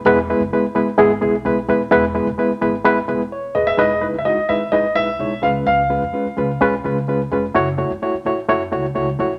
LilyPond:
<<
  \new Staff \with { instrumentName = "Grand piano" } { \time 4/4 \key e \major \tempo 4 = 128 r1 | r2. r8 dis''16 e''16 | dis''8 b'16. e''32 dis''8 e''8 dis''8 e''4 eis''8 | eis''2. r4 |
r1 | }
  \new Staff \with { instrumentName = "Reed electric piano" } { \time 4/4 \key e \major << { r1 | r2. cis''8 <gis' b'>8~ | <gis' b'>8 r2. r8 | r1 |
r1 | } \\ { <gis b e' b'>8 <gis b e' b'>8 <gis b e' b'>8 <gis b e' b'>8 <gis b e' gis'>8 <gis b e' gis'>8 <gis b e' b'>8 <gis b e' b'>8 | <gis b e' b'>8 <gis b e' b'>8 <gis b e' b'>8 <gis b e' b'>8 <gis b e' b'>8 <gis b e' b'>8 r4 | <gis dis' e' b'>8 <gis dis' e' b'>8 <gis dis' e' fis'>8 <gis dis' e' b'>8 <gis dis' e' b'>8 <gis dis' e' b'>8 <gis dis' e' cis''>8 <gis cis' eis' b'>8~ | <gis cis' eis' b'>8 <gis cis' eis' b'>8 <gis cis' eis' b'>8 <gis cis' eis' b'>8 <gis cis' eis' b'>8 <gis cis' eis' b'>8 <gis cis' eis' b'>8 <gis cis' eis' b'>8 |
<a e' fis' cis''>8 <a e' fis' cis''>8 <a e' fis' cis''>8 <a e' fis' cis''>8 <a e' fis' cis''>8 <a e' fis' cis''>8 <a e' fis' cis''>8 <a e' fis' cis''>8 | } >> }
  \new Staff \with { instrumentName = "Upright bass" } { \clef bass \time 4/4 \key e \major e,,8. fis,,16 r8 gis,,8 gis,,8 b,,8 b,,8 dis,,8 | e,,8. e,,16 r8 gis,,4 e,,4 dis,,8 | e,,8. fis,,16 r8 gis,,8 gis,,8 b,,8 b,,8 cis,8 | cis,8. eis,16 r8 cis,8 b,,8 cis,4 eis,,8 |
fis,,8. gis,,16 r8 a,,8 fis,8 cis,8 cis,8 ais,,8 | }
>>